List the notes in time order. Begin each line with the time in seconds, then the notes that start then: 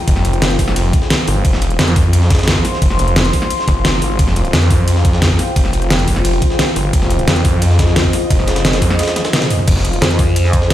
Already playing: F4 C5 G5
0.08 F1, kick, closed hi-hat, ride
0.16 snare
0.25 closed hi-hat, ride
0.33 closed hi-hat
0.42 snare, closed hi-hat, ride
0.51 closed hi-hat
0.59 F1, kick, closed hi-hat, open hi-hat, ride
0.68 snare
0.76 closed hi-hat, ride
0.85 closed hi-hat
0.93 kick, closed hi-hat, ride
1.02 snare
1.10 snare, closed hi-hat, ride
1.19 closed hi-hat
1.28 G1, closed hi-hat, open hi-hat, ride
1.45 F1 C6, kick, closed hi-hat, ride
1.53 snare
1.62 closed hi-hat, ride
1.70 closed hi-hat
1.79 F2, snare, closed hi-hat, ride
1.88 closed hi-hat
1.96 kick, closed hi-hat, open hi-hat, ride
2.13 closed hi-hat, ride
2.22 snare
2.30 kick, snare, closed hi-hat, ride
2.35 snare, closed hi-hat
2.39 snare, closed hi-hat
2.43 snare, closed hi-hat
2.48 snare, closed hi-hat, open hi-hat, ride
2.56 kick
2.65 snare, closed hi-hat, open hi-hat, ride
2.73 snare
2.82 F1, kick, closed hi-hat, ride
2.90 snare
2.99 closed hi-hat, ride
3.08 closed hi-hat
3.16 snare, closed hi-hat, ride
3.25 closed hi-hat
3.33 kick, closed hi-hat, open hi-hat, ride
3.42 snare
3.50 closed hi-hat, ride
3.59 snare
3.68 F1, kick, closed hi-hat, ride
3.85 snare, closed hi-hat, ride
4.02 G#1, closed hi-hat, open hi-hat, ride
4.19 F1 G5, kick, closed hi-hat, ride
4.28 snare
4.36 closed hi-hat, ride
4.45 closed hi-hat
4.53 F2, snare, closed hi-hat, ride
4.62 closed hi-hat
4.70 kick, closed hi-hat, open hi-hat, ride
4.88 closed hi-hat, ride
4.96 snare
5.05 kick, closed hi-hat, ride
5.13 snare
5.22 snare, closed hi-hat, open hi-hat, ride
5.30 kick
5.39 snare, closed hi-hat, open hi-hat, ride
5.48 closed hi-hat
5.56 F1, kick, closed hi-hat, ride
5.65 snare
5.73 closed hi-hat, ride
5.82 closed hi-hat
5.90 snare, closed hi-hat, ride
5.99 closed hi-hat
6.08 F1, kick, closed hi-hat, open hi-hat, ride
6.16 snare
6.25 closed hi-hat, ride
6.33 closed hi-hat
6.42 kick, closed hi-hat, ride
6.50 snare
6.59 snare, closed hi-hat, ride
6.68 closed hi-hat
6.76 G1, closed hi-hat, open hi-hat, ride
6.93 F1 D#5, kick, closed hi-hat, ride
7.02 snare
7.10 closed hi-hat, ride
7.19 closed hi-hat
7.28 F2, snare, closed hi-hat, ride
7.36 closed hi-hat
7.45 kick, closed hi-hat, open hi-hat, ride
7.62 closed hi-hat, ride
7.70 snare
7.79 kick, snare, closed hi-hat, ride
7.88 snare
7.96 snare, closed hi-hat, ride
8.05 kick
8.13 snare, closed hi-hat, open hi-hat, ride
8.22 closed hi-hat
8.30 F1, kick, closed hi-hat, ride
8.39 snare
8.48 snare, closed hi-hat, ride
8.56 snare, closed hi-hat
8.65 snare, closed hi-hat, ride
8.73 snare, closed hi-hat
8.82 F2, kick, closed hi-hat, open hi-hat, ride
8.90 snare
8.99 snare, closed hi-hat, ride
9.03 snare, closed hi-hat
9.08 snare, closed hi-hat
9.16 snare, closed hi-hat, high tom, ride
9.25 snare, closed hi-hat
9.33 snare, closed hi-hat, mid tom, ride
9.42 snare, closed hi-hat, mid tom
9.50 closed hi-hat, mid tom, open hi-hat, ride
9.59 mid tom
9.68 F1 G#5, kick, closed hi-hat, crash, ride
9.76 snare
9.85 closed hi-hat, ride
9.93 closed hi-hat
10.02 F2, snare, closed hi-hat, ride
10.10 closed hi-hat
10.19 kick, closed hi-hat, open hi-hat, ride
10.36 closed hi-hat, ride
10.45 snare
10.53 kick, closed hi-hat, ride
10.62 snare
10.70 snare, closed hi-hat, open hi-hat, ride